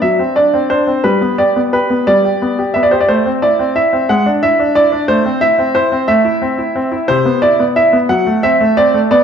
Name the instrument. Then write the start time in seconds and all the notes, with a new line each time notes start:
grand piano
0.02 F#3 E5
0.19 C4
0.36 D4 D5
0.54 C4
0.70 D4 C5
0.87 C4
1.04 G3 B4
1.21 B3
1.38 G4 D5
1.56 B3
1.73 G4 B4
1.90 B3
2.07 G3 D5
2.25 G4
2.42 B3
2.59 G4
2.74 B3 E5
2.83 D5
2.91 G4 C5
3.01 D5
3.08 A3 C5
3.26 C4
3.42 E4 D5
3.59 C4
3.76 E4 E5
3.93 C4
4.09 G#3 F#5
4.26 D4
4.43 E4 E5
4.59 D4
4.75 E4 D5
4.92 D4
5.08 A3 C5
5.25 C4
5.41 E4 E5
5.59 C4
5.75 E4 C5
5.92 C4
6.08 A3 E5
6.25 E4
6.42 C4
6.58 E4
6.76 C4
6.92 E4
7.08 C3 C5
7.25 B3
7.42 E4 D5
7.60 B3
7.76 E4 E5
7.93 B3
8.09 F#3 F#5
8.27 A3
8.43 C4 E5
8.61 A3
8.77 C4 D5
8.94 A3
9.11 B3 D5